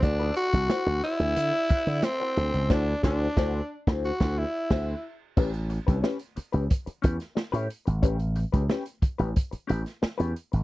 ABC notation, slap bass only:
X:1
M:4/4
L:1/16
Q:1/4=90
K:D
V:1 name="Slap bass" clef=bass
D,,2 z =C,, z D,, z D,, D, z2 D, z2 D,, ^C,, | D,,2 D,,2 D,,2 z D,,2 D,,2 z D,,2 z2 | A,,,3 =C,, z3 ^C,, z2 E,, z2 A,, z ^G,,, | A,,,3 C,, z3 A,,, z2 A,,, z2 E,, z ^G,,, |]